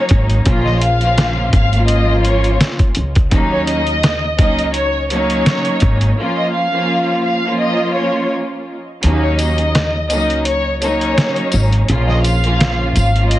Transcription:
Already playing: string section F#3 A#3 C#4 D#4, violin section C#5
0.09 upright bass G#1, kick, closed hi-hat
0.30 closed hi-hat
0.45 upright bass A#1, string section F3 A#3 C#4 F4, kick, closed hi-hat
0.65 violin section D#5, snare
0.82 violin section F5, closed hi-hat
1.00 string section F3 A#3 C#4 F4, closed hi-hat
1.18 snare, closed hi-hat
1.53 upright bass G#1, violin section F5, kick, closed hi-hat
1.73 string section F3 A#3 C#4 F4, closed hi-hat
1.88 violin section D#5, closed hi-hat
2.25 violin section C#5, closed hi-hat
2.44 closed hi-hat
2.61 snare, closed hi-hat
2.79 kick, closed hi-hat
2.95 upright bass C#2, closed hi-hat
3.15 kick, closed hi-hat
3.30 upright bass D#2, string section F#3 A#3 C#4 D#4, kick, closed hi-hat
3.52 violin section C#5
3.67 violin section D#5, closed hi-hat
3.87 closed hi-hat
4.03 snare, closed hi-hat
4.37 upright bass C#2, string section F#3 A#3 C#4 D#4, violin section D#5, kick, closed hi-hat
4.59 closed hi-hat
4.74 violin section C#5, closed hi-hat
5.10 string section F#3 A#3 C#4 D#4, violin section C#5, closed hi-hat
5.30 closed hi-hat
5.46 snare, closed hi-hat
5.65 closed hi-hat
5.80 upright bass G#1, kick, closed hi-hat
6.01 closed hi-hat
6.17 string section F3 A#3 C#4 F4
6.37 violin section D#5
6.53 violin section F5
6.71 string section F3 A#3 C#4 F4
7.25 violin section F5
7.44 string section F3 A#3 C#4 F4
7.61 violin section D#5
7.95 violin section C#5
9.01 upright bass D#2, string section F#3 A#3 C#4 D#4, closed hi-hat
9.22 violin section C#5
9.38 violin section D#5, closed hi-hat, tambourine
9.58 closed hi-hat
9.75 snare, closed hi-hat
10.09 upright bass C#2, string section F#3 A#3 C#4 D#4, violin section D#5, closed hi-hat, tambourine
10.30 closed hi-hat
10.45 violin section C#5, closed hi-hat
10.81 string section F#3 A#3 C#4 D#4, violin section C#5, closed hi-hat, tambourine
11.01 closed hi-hat
11.18 snare, closed hi-hat
11.36 closed hi-hat
11.52 upright bass G#1, closed hi-hat, tambourine
11.72 closed hi-hat
11.88 upright bass A#1, string section F3 A#3 C#4 F4, closed hi-hat
12.08 violin section D#5, snare
12.24 violin section F5, closed hi-hat, tambourine
12.43 string section F3 A#3 C#4 F4, closed hi-hat
12.61 snare, closed hi-hat
12.96 upright bass G#1, violin section F5, closed hi-hat, tambourine
13.15 string section F3 A#3 C#4 F4, closed hi-hat
13.31 violin section D#5, closed hi-hat

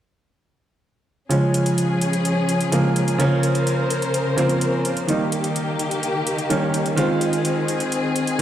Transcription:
1.29 grand piano C#3 F3 G#3 C#4, string section F3 C#4 G#4, closed hi-hat
1.54 closed hi-hat
1.66 closed hi-hat
1.78 closed hi-hat
2.01 closed hi-hat
2.13 closed hi-hat
2.25 closed hi-hat
2.49 closed hi-hat
2.61 closed hi-hat
2.72 grand piano C#3 F3 G#3 A#3, closed hi-hat
2.96 closed hi-hat
3.08 closed hi-hat
3.18 grand piano C#3 F3 A#3 C#4, string section C#3 A#4 C5, closed hi-hat
3.43 closed hi-hat
3.55 closed hi-hat
3.67 closed hi-hat
3.90 closed hi-hat
4.02 closed hi-hat
4.14 closed hi-hat
4.36 grand piano C#3 F3 A#3 C4, closed hi-hat
4.49 closed hi-hat
4.61 closed hi-hat
4.85 closed hi-hat
4.97 closed hi-hat
5.07 grand piano D#3 G3 A#3 D#4, string section D#3 A#3 G4, closed hi-hat
5.32 closed hi-hat
5.44 closed hi-hat
5.56 closed hi-hat
5.79 closed hi-hat
5.91 closed hi-hat
6.03 closed hi-hat
6.27 closed hi-hat
6.38 closed hi-hat
6.50 grand piano D#3 G3 A#3 C#4, closed hi-hat
6.74 closed hi-hat
6.86 closed hi-hat
6.96 grand piano D#3 G#3 C4 F4, string section C4 G#4, closed hi-hat
7.21 closed hi-hat
7.33 closed hi-hat
7.45 closed hi-hat
7.68 closed hi-hat
7.80 closed hi-hat
7.92 closed hi-hat
8.16 closed hi-hat
8.27 closed hi-hat

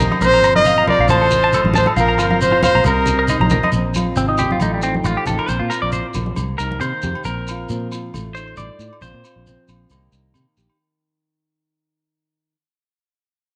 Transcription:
Already playing: steel-string acoustic guitar A#3 D#4 G4, transistor combo organ C5 D#5 A#5
0.00 steel-string acoustic guitar D#3, high conga, low conga
0.12 muted clean electric guitar stroke, high conga, low agogo
0.21 fingered electric bass A#1, steel-string acoustic guitar A#2 F3 C4, clean electric guitar A#4, trumpet C5, transistor combo organ F5, muted steel-string acoustic guitar stroke, shekere
0.34 clean electric guitar A#5
0.43 fingered electric bass G1, clean electric guitar A#5, low agogo, shekere
0.55 clean electric guitar A#4, trumpet D#5, high conga
0.65 steel-string acoustic guitar F4, clean electric guitar F5, shekere
0.78 clean electric guitar A#5
0.86 steel-string acoustic guitar F3, clean electric guitar A#4, trumpet D5, high conga, low conga, low agogo
0.99 fingered electric bass A#1, clean electric guitar F5
1.07 fingered electric bass A1, steel-string acoustic guitar A2, trumpet C5, transistor combo organ D#5 A5, clean electric guitar A5, low conga, low agogo, shekere
1.21 clean electric guitar A4
1.30 low conga, shekere
1.44 clean electric guitar A5
1.51 steel-string acoustic guitar G2, clean electric guitar A4, low agogo, shekere
1.64 fingered electric bass A1, high conga
1.74 steel-string acoustic guitar A2, clean electric guitar A5, high conga, low conga, shekere
1.78 trumpet C5
1.86 clean electric guitar A4, high conga, low agogo
1.95 fingered electric bass A#1, steel-string acoustic guitar A#2 F3 C4, transistor combo organ C5 A#5, clean electric guitar F5, shekere
1.99 steel-string acoustic guitar F4, trumpet A#4
2.08 clean electric guitar A#5
2.18 fingered electric bass G1, clean electric guitar F4, trumpet A#4, low agogo, shekere
2.31 clean electric guitar F5, high conga
2.41 steel-string acoustic guitar A2, trumpet C5, shekere
2.52 clean electric guitar F4
2.63 steel-string acoustic guitar A#2, trumpet C5, clean electric guitar F5, high conga, low conga, low agogo, shekere
2.75 fingered electric bass A#1, clean electric guitar A#5
2.83 fingered electric bass C2, steel-string acoustic guitar C3, clean electric guitar A#4, transistor combo organ C5 D#5, low conga, low agogo, shekere
2.87 trumpet A#4
3.06 low conga, shekere
3.19 clean electric guitar A#4
3.28 steel-string acoustic guitar D#4, clean electric guitar D#5, low agogo, shekere
3.40 fingered electric bass A#1, clean electric guitar A#5, high conga
3.50 steel-string acoustic guitar D#3, clean electric guitar A#4, high conga, low conga, shekere
3.63 clean electric guitar D#5, high conga, low agogo
3.72 fingered electric bass A#1, steel-string acoustic guitar A#2 C4, shekere
3.94 steel-string acoustic guitar F4, high conga, low agogo, shekere
4.16 fingered electric bass G#1, steel-string acoustic guitar C3, clean electric guitar C4, shekere
4.29 clean electric guitar D#4
4.38 steel-string acoustic guitar A#2, clean electric guitar G4, low conga, low agogo, shekere
4.51 clean electric guitar F4, high conga
4.60 fingered electric bass A1, steel-string acoustic guitar A2 A3, clean electric guitar D#4, high conga, low agogo, shekere
4.74 clean electric guitar G3
4.82 clean electric guitar C4, steel-string acoustic guitar D#4, shekere
4.94 high conga
5.04 fingered electric bass A1, steel-string acoustic guitar F3 A3, clean electric guitar F4, low agogo, shekere
5.17 clean electric guitar G4
5.26 fingered electric bass A1, clean electric guitar A4, low conga, shekere
5.30 steel-string acoustic guitar D#4
5.39 clean electric guitar A#4, low agogo
5.48 fingered electric bass A#1, steel-string acoustic guitar A#2 C4, clean electric guitar C5, shekere
5.59 fingered electric bass A#2, clean electric guitar F4
5.70 steel-string acoustic guitar F4, clean electric guitar A#4, low agogo, shekere
5.82 fingered electric bass A#1, clean electric guitar D5
5.92 steel-string acoustic guitar A2, clean electric guitar C5, shekere
6.14 fingered electric bass A#1, muted steel-string acoustic guitar stroke, low conga, low agogo, shekere
6.26 high conga
6.36 fingered electric bass C2, steel-string acoustic guitar C3 A#3, high conga, low agogo, shekere
6.58 fingered electric bass C2, steel-string acoustic guitar D#4, clean electric guitar A#4, shekere
6.72 high conga
6.80 fingered electric bass C3, steel-string acoustic guitar D#3 A#3, clean electric guitar C5, low agogo, shekere
7.02 fingered electric bass F2, steel-string acoustic guitar G4, low conga, shekere
7.15 low agogo
7.24 fingered electric bass A#1, steel-string acoustic guitar A#2 C4, clean electric guitar A#4, shekere
7.48 steel-string acoustic guitar F4, low agogo, shekere
7.69 fingered electric bass A#2, steel-string acoustic guitar F3 C4, shekere
7.92 steel-string acoustic guitar F4, low agogo, shekere
8.14 fingered electric bass A1, steel-string acoustic guitar A2 A3, low agogo, shekere
8.35 steel-string acoustic guitar D#4, clean electric guitar C5, shekere
8.57 fingered electric bass A1, steel-string acoustic guitar G2, clean electric guitar D5, low agogo, shekere
8.79 fingered electric bass A2, steel-string acoustic guitar A2, shekere
8.93 low agogo
9.01 fingered electric bass A#1, steel-string acoustic guitar A#2 C4 F4, clean electric guitar C5, muted steel-string acoustic guitar stroke, shekere
9.14 fingered electric bass A#2
9.25 steel-string acoustic guitar F4, low agogo, shekere
9.36 fingered electric bass A#1
9.47 steel-string acoustic guitar F3 C4, shekere
9.68 fingered electric bass A#1, steel-string acoustic guitar F4, low agogo, shekere
9.90 fingered electric bass C2, steel-string acoustic guitar C3 D#3 A#3 D#4 G4, low agogo, shekere
10.12 fingered electric bass C2, steel-string acoustic guitar D#4, shekere
10.34 fingered electric bass C3, steel-string acoustic guitar D#3 A#3, low agogo, shekere
10.57 fingered electric bass A#1, steel-string acoustic guitar G4, shekere
10.70 low agogo

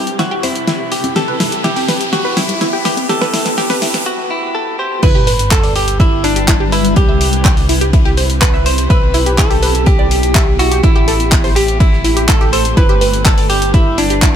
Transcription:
Already playing: analog synth bass C2, ambient pad C3 C4 E4 G4, clean electric guitar G4, riser
0.07 closed hi-hat
0.19 synth pluck E4, clean electric guitar F#4, snare, closed hi-hat
0.31 synth pluck G4
0.43 clean electric guitar E4, synth pluck C5, open hi-hat, high conga
0.55 closed hi-hat
0.67 synth pluck E4, snare, closed hi-hat
0.92 clean electric guitar G4, open hi-hat
1.04 closed hi-hat, high conga
1.16 analog synth bass B1, ambient pad B3, synth pluck G4, clean electric guitar A4, snare, closed hi-hat
1.28 synth pluck B4
1.40 synth pluck E4, snare, open hi-hat, low conga
1.52 closed hi-hat
1.64 synth pluck E4, clean electric guitar G4, snare, closed hi-hat
1.76 synth pluck G4, open hi-hat, high conga
1.88 synth pluck B4, snare, open hi-hat
2.01 closed hi-hat
2.13 clean electric guitar F#4, synth pluck G4, snare, closed hi-hat
2.25 synth pluck B4
2.37 clean electric guitar E4, synth pluck E4, snare, open hi-hat, high conga, low conga
2.48 closed hi-hat, low conga
2.61 synth pluck E4, snare, closed hi-hat
2.73 synth pluck G4
2.85 clean electric guitar G4, synth pluck B4, snare, open hi-hat
2.97 closed hi-hat, high conga
3.09 analog synth bass A1, synth pluck G4, clean electric guitar A4, snare, closed hi-hat
3.21 synth pluck B4, snare
3.34 synth pluck E4, snare, open hi-hat
3.46 snare, closed hi-hat
3.58 synth pluck G4, clean electric guitar G4, snare, closed hi-hat
3.70 synth pluck B4, snare, open hi-hat, high conga
3.82 synth pluck E4, snare, open hi-hat
3.94 snare, closed hi-hat
4.06 clean electric guitar F#4
4.31 clean electric guitar E4
4.55 clean electric guitar A4
4.79 clean electric guitar G4 C5
5.03 analog synth bass G1, ambient pad G3 D4 E4 B4, synth pluck E4, synth bell B4, clean electric guitar B4, kick, closed hi-hat, ride, crash, sub drop
5.15 synth pluck G4
5.27 synth pluck B4, open hi-hat, ride
5.39 closed hi-hat, ride
5.51 synth bell A4, clean electric guitar A4, kick, snare, clap, closed hi-hat, ride
5.63 synth pluck D5, open hi-hat
5.76 synth bell G4, clean electric guitar G4, open hi-hat, ride
5.88 closed hi-hat
6.00 synth bell E4, clean electric guitar E4, synth pluck E5, kick, closed hi-hat, ride
6.24 clean electric guitar D4, synth bell D4, synth pluck E4, open hi-hat, ride
6.36 synth pluck G4, closed hi-hat
6.47 synth pluck E4, kick, snare, clap, closed hi-hat, ride
6.60 synth pluck G4
6.72 synth bell E4, clean electric guitar E4, synth pluck B4, open hi-hat, ride
6.84 snare, closed hi-hat
6.96 analog synth bass C2, ambient pad C3 C4 G4, synth bell G4, clean electric guitar G4, kick, closed hi-hat, ride
7.09 synth pluck E5
7.21 open hi-hat, ride
7.33 closed hi-hat
7.45 synth pluck G5, kick, snare, clap, closed hi-hat, ride
7.57 open hi-hat
7.69 synth pluck E4, snare, open hi-hat, ride
7.81 synth pluck G4, closed hi-hat
7.93 synth pluck E4, kick, closed hi-hat, ride
8.05 synth pluck G4, snare
8.17 synth pluck C5, open hi-hat, ride
8.30 closed hi-hat
8.41 synth bell B4, clean electric guitar B4, kick, snare, clap, closed hi-hat, ride
8.54 synth pluck E5, snare
8.66 synth bell C5, clean electric guitar C5, snare, open hi-hat, ride
8.78 closed hi-hat, ride
8.90 analog synth bass B1, ambient pad B3, clean electric guitar B4, synth bell B4, synth pluck E5, kick, closed hi-hat, ride
9.14 synth pluck E4, open hi-hat, ride
9.26 synth pluck G4, closed hi-hat, ride
9.38 synth pluck E4, clean electric guitar A4, synth bell A4, kick, snare, clap, closed hi-hat, ride
9.51 synth pluck G4, open hi-hat
9.62 synth pluck B4, open hi-hat, ride
9.75 closed hi-hat
9.86 clean electric guitar G4, synth bell G4, kick, closed hi-hat, ride
9.99 synth pluck D5
10.11 open hi-hat, ride
10.23 closed hi-hat
10.35 synth pluck E5, kick, snare, clap, closed hi-hat, ride
10.59 synth pluck E4, clean electric guitar F#4, synth bell F#4, open hi-hat, ride
10.71 synth pluck G4, snare, closed hi-hat
10.83 analog synth bass A1, ambient pad A3 C4, synth bell E4, clean electric guitar E4, synth pluck E4, kick, closed hi-hat, ride
10.96 synth pluck G4
11.08 synth pluck A4, open hi-hat, ride
11.20 closed hi-hat
11.31 kick, snare, clap, closed hi-hat, ride
11.44 synth pluck C5, open hi-hat
11.56 clean electric guitar G4, synth bell G4, snare, open hi-hat, ride
11.68 closed hi-hat
11.80 synth bell E4, clean electric guitar E4, synth pluck E5, kick, closed hi-hat, ride
11.93 snare
12.04 synth pluck E4, snare, open hi-hat, ride
12.17 synth pluck G4, closed hi-hat
12.28 synth pluck E4, clean electric guitar A4, synth bell A4, kick, snare, clap, closed hi-hat, ride
12.41 synth pluck G4, snare
12.53 synth pluck A4, clean electric guitar C5, synth bell C5, snare, open hi-hat, ride
12.65 closed hi-hat, ride
12.77 analog synth bass G1, ambient pad G3 D4 E4 B4, synth pluck E4, clean electric guitar B4, synth bell B4, kick, closed hi-hat, ride
12.89 synth pluck G4
13.01 synth pluck B4, open hi-hat, ride
13.13 closed hi-hat, ride
13.25 clean electric guitar A4, synth bell A4, kick, snare, clap, closed hi-hat, ride
13.38 synth pluck D5, open hi-hat
13.50 clean electric guitar G4, synth bell G4, open hi-hat, ride
13.62 closed hi-hat
13.74 clean electric guitar E4, synth bell E4, synth pluck E5, kick, closed hi-hat, ride
13.98 clean electric guitar D4, synth bell D4, synth pluck E4, open hi-hat, ride
14.10 synth pluck G4, closed hi-hat
14.22 synth pluck E4, kick, snare, clap, closed hi-hat, ride

